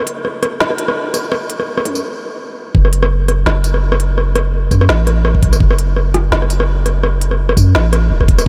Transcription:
Already playing: F#1
0.07 kick, closed hi-hat
0.25 cross-stick
0.43 cross-stick, closed hi-hat
0.60 F#1, snare
0.70 cross-stick
0.78 closed hi-hat
0.88 cross-stick
1.14 cross-stick, closed hi-hat, tambourine
1.32 kick, cross-stick
1.50 kick, closed hi-hat
1.60 cross-stick
1.78 cross-stick
1.85 F#2, closed hi-hat
1.95 tambourine
2.75 F#1, kick
2.85 cross-stick
2.93 closed hi-hat
3.03 cross-stick
3.28 cross-stick, closed hi-hat
3.46 F#1, cross-stick, snare
3.64 closed hi-hat, tambourine
3.74 cross-stick
3.92 cross-stick
4.00 closed hi-hat
4.18 cross-stick
4.36 cross-stick, closed hi-hat
4.71 F#2, kick, cross-stick, closed hi-hat, tambourine
4.81 cross-stick
4.89 A1, snare
5.07 cross-stick, closed hi-hat
5.25 cross-stick
5.35 kick
5.43 B1, kick, closed hi-hat
5.52 F#1, cross-stick, tambourine
5.60 F#1, kick
5.71 cross-stick
5.79 closed hi-hat
5.96 cross-stick
6.14 cross-stick, closed hi-hat
6.32 F#1, snare
6.42 cross-stick
6.50 closed hi-hat, tambourine
6.60 cross-stick
6.86 cross-stick, closed hi-hat
7.03 cross-stick
7.21 closed hi-hat
7.31 cross-stick
7.49 cross-stick
7.57 F#2, kick, closed hi-hat, tambourine
7.75 A1, cross-stick, snare
7.93 cross-stick, closed hi-hat
8.11 E1
8.20 kick, cross-stick
8.28 kick, closed hi-hat
8.38 cross-stick, tambourine

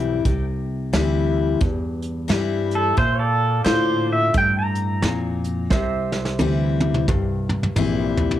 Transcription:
Already playing: B1 G2 E3 G3 C4 E4 G5
0.25 C2 C3, kick, closed hi-hat
0.93 D2 E3 G3 C4 E4, snare, closed hi-hat
1.61 E2 G2, kick, closed hi-hat
2.02 closed hi-hat
2.28 G2 E3 G3 C4 E4, snare, closed hi-hat
2.71 closed hi-hat
2.75 A4
2.97 A#2 C5 E5, kick, closed hi-hat
3.19 A4 F5
3.24 D5
3.65 A2 D3 D4 F4 C5, snare, closed hi-hat
4.13 E5
4.34 G2 A2 G5, kick, closed hi-hat
4.59 A#5
4.75 closed hi-hat
5.02 F2 A#2, snare, closed hi-hat
5.44 closed hi-hat
5.70 C2 C3 C5 E5, kick, snare
6.12 snare
6.25 snare
6.39 D2 E3 G3 C4 E4, high tom
6.80 high tom
6.94 mid tom
7.08 C2 G2, kick, mid tom
7.49 mid tom
7.63 mid tom
7.76 A#1 E3 G3 C4 E4, mid tom
8.17 floor tom
8.31 floor tom

